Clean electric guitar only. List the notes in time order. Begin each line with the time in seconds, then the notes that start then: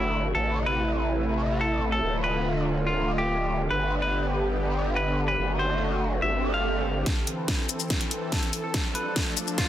Already playing: E4
0.35 A4
0.66 B4
1.61 A4
1.92 A4
2.24 B4
2.87 F4
3.18 G4
3.70 B4
4.02 B4
4.96 B4
5.28 B4
5.59 C5
6.22 E5
6.54 F5
7.06 A4
7.38 B4
8.32 A4
8.64 A4
8.95 B4
9.58 F4